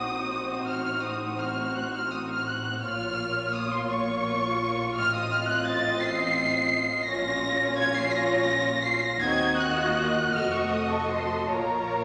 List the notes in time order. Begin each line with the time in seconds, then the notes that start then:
Already playing: A#1 A#2 C4 D#4 F#4 C5 D#6
0.68 A1 A2 F6
1.03 D#6
1.39 F6
1.76 F#6
1.95 F6
2.12 D#6
2.31 F6
2.48 F#6
2.83 A#1 A#2 A#3 F4 C#5 F6
3.54 D#6
3.74 C6
3.92 C#6
4.96 A1 A2 C4 D#5 F6
5.15 D#6
5.32 F6
5.50 F#6
5.66 A6
6.01 C7
7.07 A#1 A#2 C#4 F4 C#5 A#6
7.78 G#6
7.96 C7
8.12 A#6
8.84 C7
9.03 A#6
9.20 D#2 C4 D#4 F#4 D#5 G#6
9.58 F#6
9.77 A#3 F4
10.32 F1 F2 A3 F#4 D#5 F6
10.53 C#6
10.71 D#6
10.91 A4 C#6
11.10 C6
11.51 A#1 A#2 A#3 F4 A#4 C#5 A#5